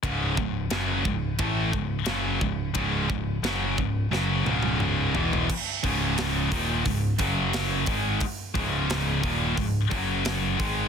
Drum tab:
CC |----------------|----------------|x---------------|----------------|
RD |b---b---b---b---|b---b-----------|----------------|----------------|
HH |----------------|----------------|--o-o-o-o-o-o-o-|o-o-o-o-o-o-o-o-|
SD |----o-------o---|----o---o-------|----o-------o---|----o-------o---|
T1 |----------------|----------oo----|----------------|----------------|
T2 |----------------|------------o---|----------------|----------------|
FT |----------------|--------------oo|----------------|----------------|
BD |o-o---o-o-o---o-|o-o---o---------|o-o---o-o-o---o-|o-o---o-o-o---o-|